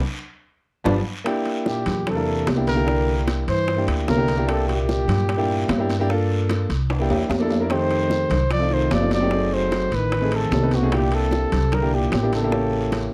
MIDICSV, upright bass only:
0, 0, Header, 1, 2, 480
1, 0, Start_track
1, 0, Tempo, 402414
1, 1504, Time_signature, 4, 2, 24, 8
1, 15671, End_track
2, 0, Start_track
2, 0, Title_t, "Upright bass"
2, 0, Program_c, 0, 32
2, 1019, Note_on_c, 0, 31, 99
2, 1200, Note_off_c, 0, 31, 0
2, 2221, Note_on_c, 0, 40, 90
2, 2896, Note_off_c, 0, 40, 0
2, 2943, Note_on_c, 0, 36, 87
2, 4075, Note_off_c, 0, 36, 0
2, 4150, Note_on_c, 0, 43, 92
2, 4596, Note_off_c, 0, 43, 0
2, 4622, Note_on_c, 0, 38, 69
2, 4849, Note_off_c, 0, 38, 0
2, 4863, Note_on_c, 0, 36, 84
2, 5995, Note_off_c, 0, 36, 0
2, 6056, Note_on_c, 0, 43, 92
2, 6736, Note_off_c, 0, 43, 0
2, 6786, Note_on_c, 0, 43, 86
2, 7917, Note_off_c, 0, 43, 0
2, 7986, Note_on_c, 0, 36, 97
2, 8435, Note_off_c, 0, 36, 0
2, 8462, Note_on_c, 0, 40, 62
2, 8689, Note_off_c, 0, 40, 0
2, 8702, Note_on_c, 0, 41, 89
2, 9834, Note_off_c, 0, 41, 0
2, 9898, Note_on_c, 0, 36, 89
2, 10576, Note_off_c, 0, 36, 0
2, 10626, Note_on_c, 0, 30, 84
2, 11755, Note_off_c, 0, 30, 0
2, 11822, Note_on_c, 0, 33, 95
2, 12496, Note_off_c, 0, 33, 0
2, 12531, Note_on_c, 0, 36, 82
2, 13666, Note_off_c, 0, 36, 0
2, 13740, Note_on_c, 0, 36, 92
2, 14414, Note_off_c, 0, 36, 0
2, 14465, Note_on_c, 0, 33, 88
2, 15591, Note_off_c, 0, 33, 0
2, 15671, End_track
0, 0, End_of_file